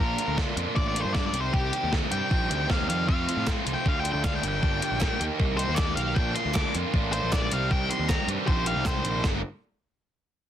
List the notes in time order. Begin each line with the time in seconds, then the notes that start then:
0.00 A#1 A#2 D3 A#3 D4 F4 A#4
0.18 A#3 D4 F4, closed hi-hat
0.28 D2
0.38 D3 A#3 D4 F4, kick, snare
0.56 F2 A#2 D3 A#3 D4 F4, closed hi-hat
0.76 A1 D3 A#3 D4 F4 D5, kick
0.88 D5
0.95 A#3 D4 F4, closed hi-hat
1.00 C5
1.05 G2
1.13 A#2 D3 A#3 D4 F4 D5, kick, snare
1.26 D5
1.33 C2 C3 D#3 G3 C4 G4, closed hi-hat
1.40 C5
1.53 C2 C3 D#3 G3 C4 G4, kick
1.72 G3 C4 G4, closed hi-hat
1.84 D#2
1.91 D#3 G3 C4 G4, kick, snare
2.11 G2 C3 D#3 G3 C4 G4 G5, closed hi-hat
2.30 A#1 D#3 G3 C4 G4, kick
2.50 D2 G3 C4 G4, closed hi-hat
2.69 D#2 C3 D#3 G3 C4 G4 F5, kick, snare
2.88 F2 G3 C4 G4 F5, closed hi-hat
3.08 F2 C3 F3 A3 C4 F4 F5, kick
3.27 F3 A3 C4 F4, closed hi-hat
3.37 A2
3.47 F3 A3 C4 F4, kick, snare, clap
3.65 C2 F2 C3 F3 A3 C4 F4, closed hi-hat
3.74 G5
3.85 D2 D3 A3 D4 F4 F5, kick
4.00 F4 G5
4.05 A3 D4, closed hi-hat
4.12 D2 G5
4.23 D3 A3 D4 F4 F5, kick, snare, clap
4.36 G5
4.42 G1 G2 D3 G3 A#3 D4 G4, closed hi-hat
4.48 G5
4.61 G1 G2 D3 G3 A#3 D4 G4, kick
4.81 G3 A#3 D4 G4, closed hi-hat
4.91 A#1
4.99 G3 A#3 D4 G4, kick, snare, clap
5.19 D#2 D#3 A#3 D#4 G4, closed hi-hat
5.38 C2 D#3 A#3 D#4 G4, kick
5.57 A#3 D#4 G4 C5, closed hi-hat
5.69 D#2
5.75 D#3 A#3 D#4 G4 D5, kick, snare, clap
5.96 B1 A#3 D#4 G4 F5, closed hi-hat
6.15 A#1 A#2 D3 A#3 D4 G5, kick
6.19 F4
6.35 A#3 D4 F4 C6, closed hi-hat
6.46 D2
6.54 D3 A#3 D4 F4 D6, kick, snare, clap
6.74 F2 A#2 D3 A#3 D4 F4, closed hi-hat
6.93 A1 D3 A#3 D4 F4, kick
7.12 A#3 D4 F4 C5, closed hi-hat
7.23 A#1
7.32 A#2 D3 A#3 D4 F4 D5, kick, snare, clap
7.52 C2 C3 D#3 G3 C4 G4 F5, closed hi-hat
7.71 C2 C3 D#3 G3 C4 G4 G5, kick
7.90 G3 C4 G4 C6, closed hi-hat
7.99 D#2
8.08 D#3 G3 C4 G4 A#5, kick, snare, clap
8.28 G2 C3 D#3 G3 C4 G4, closed hi-hat
8.47 A#1 D#3 G3 C4 G4 C5, kick
8.66 G3 C4 G4 F5, closed hi-hat
8.75 C2
8.85 C3 D#3 G3 C4 G4 C5, kick, snare, clap
9.04 A#1 G3 C4 G4, closed hi-hat
9.23 G1 G2 D3 G3 A#3 D4 A#4, kick, snare, clap